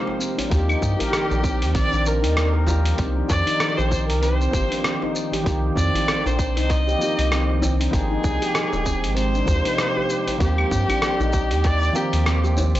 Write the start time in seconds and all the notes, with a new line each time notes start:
Already playing: C3 D#3 F3 G#3 A#3 G4 C5
0.07 djembe slap
0.20 C4, shaker
0.38 D4, open hi-hat, djembe tone, shaker
0.50 D#2 D#3 F3 A#3 D#4 G4 D5 G5, kick, open hi-hat, shaker
0.54 G4
0.68 D#4, claves, shaker
0.81 G2, kick, djembe tone, shaker
0.99 A#4, open hi-hat, djembe bass, shaker
1.12 G4, cross-stick, open hi-hat, shaker
1.31 A#1, djembe slap, shaker
1.43 C4, kick, djembe slap, djembe tone, shaker
1.62 D#2, open hi-hat, shaker
1.74 A#1 C4 D5, kick, open hi-hat, shaker
1.92 A#1 D4, djembe slap, shaker
2.06 A#4, shaker
2.22 D#2 D#4, open hi-hat, shaker
2.37 cross-stick, open hi-hat, shaker
2.54 A#4
2.66 F3 A#3 D#4 G4, djembe slap, djembe tone, shaker
2.85 open hi-hat, shaker
2.97 C2 D#3 F3 A#3 C4 G4, kick, open hi-hat, shaker
3.16 D4
3.28 F2 D5, kick, djembe tone, shaker
3.47 D#4, open hi-hat, shaker
3.60 cross-stick, open hi-hat, shaker
3.77 A#1 G4 C5, djembe slap, shaker
3.91 G4, kick, djembe tone, shaker
4.08 C2 A#4, open hi-hat, shaker
4.21 C4 C5, open hi-hat, shaker
4.41 shaker
4.51 G1 D#3 F3 A#3 G4, kick, djembe bass, shaker
4.71 D4, open hi-hat, shaker
4.84 cross-stick, open hi-hat, shaker
5.02 D#4, djembe slap
5.16 shaker
5.32 G4, open hi-hat, djembe tone, shaker
5.44 C2 D#3 F3 A#3 G4, kick, open hi-hat, shaker
5.76 F2 C4 D5, kick, djembe tone, shaker
5.94 open hi-hat, djembe bass, shaker
6.08 C4, cross-stick, open hi-hat, shaker
6.26 A#1 D4 C5, djembe slap, shaker
6.38 kick, djembe tone, shaker
6.57 C2 D#4 C5, open hi-hat, shaker
6.70 D#5, kick, open hi-hat, shaker
6.88 G4, djembe slap, shaker
6.99 D#3 F3 A#3 G4, shaker
7.19 C2, open hi-hat, shaker
7.31 C4, cross-stick, open hi-hat, shaker
7.62 C4, djembe slap, djembe tone, shaker
7.80 D4, open hi-hat, shaker
7.91 G#1 C3 F3 G#3 A#3 D#4 G#4, kick, open hi-hat, shaker
7.95 G5
8.11 D#4
8.24 C2, kick, djembe tone, shaker
8.42 G4, open hi-hat, shaker
8.55 G4, cross-stick, open hi-hat, shaker
8.73 D#1, djembe slap, shaker
8.85 C4, kick, djembe tone, shaker
9.04 G#1, open hi-hat, shaker
9.16 C4 C5, open hi-hat, shaker
9.35 D4, shaker
9.45 D#2 D#3 F3 A#3, kick, djembe bass, shaker
9.50 G4
9.65 D#4, open hi-hat, shaker
9.78 cross-stick, open hi-hat, shaker
9.96 G4, djembe slap
10.09 G4, shaker
10.27 open hi-hat, djembe tone, shaker
10.38 D#2 D#3 F3 A#3 C4 G4 D5, kick, open hi-hat, shaker
10.58 claves
10.71 G2 C4, kick, djembe tone, shaker
10.89 D4, open hi-hat, djembe bass, claves, shaker
11.02 cross-stick, open hi-hat, shaker
11.20 A#1 D#4, djembe slap, shaker
11.33 kick, djembe tone, shaker
11.51 D#2 G4, open hi-hat, shaker
11.64 G4 D5, kick, open hi-hat, shaker
11.83 djembe slap, shaker
11.93 F3 A#3 C4 D#4 G4, shaker
11.97 G4
12.13 D#2, open hi-hat, shaker
12.26 C4, cross-stick, open hi-hat, shaker
12.44 G4, shaker
12.57 djembe slap, djembe tone, shaker
12.75 A#1 C5, open hi-hat, shaker